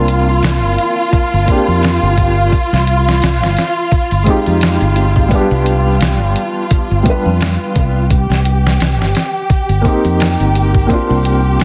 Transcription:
Already playing: fingered electric bass C2, felt piano A#3 C4 D4 F4, violin section F4
0.08 closed hi-hat
0.43 fingered electric bass C2, snare, closed hi-hat
0.63 fingered electric bass G1
0.78 closed hi-hat
1.13 kick, closed hi-hat
1.34 fingered electric bass G1
1.45 felt piano A#3 C4, kick, closed hi-hat
1.50 felt piano D4 G4
1.68 fingered electric bass F2
1.83 snare, closed hi-hat
2.03 fingered electric bass G1
2.18 kick, closed hi-hat
2.52 kick, closed hi-hat
2.73 fingered electric bass C2, snare
2.87 closed hi-hat
3.09 snare
3.22 fingered electric bass C2, snare, open hi-hat
3.42 fingered electric bass G1, snare
3.57 snare, closed hi-hat
3.91 kick, closed hi-hat
4.11 fingered electric bass G1, closed hi-hat
4.23 felt piano G#3 C4, kick, closed hi-hat
4.28 felt piano D#4 G4
4.46 fingered electric bass F2, closed hi-hat
4.61 snare, closed hi-hat
4.81 fingered electric bass G1, closed hi-hat
4.96 closed hi-hat
5.16 kick
5.28 felt piano G3 B3, kick, closed hi-hat
5.33 felt piano D4 G4
5.51 fingered electric bass C2
5.66 closed hi-hat
6.01 fingered electric bass C2, snare, closed hi-hat
6.21 fingered electric bass G1
6.36 closed hi-hat
6.71 kick, closed hi-hat
6.91 fingered electric bass G1
7.03 felt piano G3 B3, kick, closed hi-hat
7.07 felt piano D4 B4
7.26 fingered electric bass F2
7.41 snare, closed hi-hat
7.76 fingered electric bass C2, kick, closed hi-hat
8.10 violin section G4, kick, closed hi-hat
8.30 fingered electric bass C2, snare
8.45 closed hi-hat
8.67 snare
8.80 fingered electric bass C2, snare, open hi-hat
8.99 fingered electric bass G1, snare
9.15 snare, closed hi-hat
9.50 kick, closed hi-hat
9.69 fingered electric bass G1, closed hi-hat
9.81 felt piano A#3 C4, kick, closed hi-hat
9.86 felt piano D#4 G4
10.05 fingered electric bass F2, closed hi-hat
10.20 snare, closed hi-hat
10.40 fingered electric bass G1, closed hi-hat
10.55 closed hi-hat
10.75 kick
10.86 felt piano A#3 C4, kick, closed hi-hat
10.91 felt piano D4 F4
11.10 fingered electric bass C2
11.25 closed hi-hat
11.60 closed hi-hat

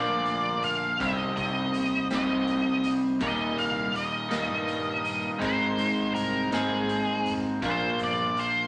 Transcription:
Already playing: clean electric guitar A#2 F3 A#3 D4 F4, tonewheel organ D3 F3 A#3 A#4, lead electric guitar D5
0.09 fingered electric bass D2
0.26 closed hi-hat
0.63 lead electric guitar F5, closed hi-hat
0.99 fingered electric bass C2, clean electric guitar C3 G3 C4 D#4 G4, tonewheel organ G3 C4 D#4 C5, lead electric guitar D#5, kick, closed hi-hat
1.37 fingered electric bass C3, lead electric guitar D#5, kick, closed hi-hat
1.74 fingered electric bass D#2, closed hi-hat
2.10 fingered electric bass C2, clean electric guitar C3 G3 C4 D#4 G4, snare, closed hi-hat
2.15 lead electric guitar D#5
2.31 fingered electric bass C2
2.47 closed hi-hat
2.84 fingered electric bass C2, closed hi-hat
3.19 clean electric guitar D#2 A#2 D#3 G3 A#3 D#4, fingered electric bass D#2, tonewheel organ G3 A#3 D#4 A#4, kick, closed hi-hat
3.23 lead electric guitar D#5
3.58 fingered electric bass C2, lead electric guitar F5, closed hi-hat
3.94 fingered electric bass D#2, lead electric guitar D#5, closed hi-hat
4.29 clean electric guitar D#2 A#2 D#3 G3 A#3 D#4, snare, closed hi-hat
4.33 fingered electric bass D#2
4.49 fingered electric bass G2
4.68 closed hi-hat
5.05 closed hi-hat
5.38 fingered electric bass G#1, clean electric guitar G#2 D#3 G#3 C4 D#4, tonewheel organ G#3 C4 C5, kick, closed hi-hat
5.45 lead electric guitar C5
5.78 fingered electric bass G#2, closed hi-hat
6.15 fingered electric bass C2, lead electric guitar A#4, closed hi-hat
6.51 fingered electric bass G#1, clean electric guitar G#2 D#3 G#3 C4 D#4, lead electric guitar G#4, snare, closed hi-hat
6.72 fingered electric bass G#1
6.89 closed hi-hat
7.26 fingered electric bass F1, closed hi-hat
7.61 fingered electric bass A#1, clean electric guitar A#2 F3 A#3 D4 F4, tonewheel organ F3 A#3 D4 A#4, kick, closed hi-hat
7.66 lead electric guitar C5
7.99 fingered electric bass G1, closed hi-hat
8.04 lead electric guitar D5
8.36 fingered electric bass A#1, lead electric guitar C5, closed hi-hat

